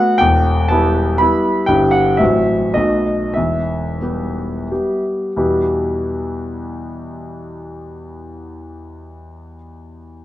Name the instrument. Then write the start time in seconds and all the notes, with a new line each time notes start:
grand piano
Already playing: A3 B3 F#4 F#5
0.18 E1 E2 G5
0.68 G3 B3 E4 A5
1.18 G3 B3 E4 B5
1.66 G1 G2 G3 B3 E4 G5
1.91 F#5
2.17 A1 A2 F#3 C4 E5
2.21 F#4
2.74 B1 B2 A3 B3 F#4 D#5
3.34 E1 E2 E5
4.02 G3 B3 G4
4.71 G3 B3 G4
5.36 E2 B2 G3 B3 E4 G4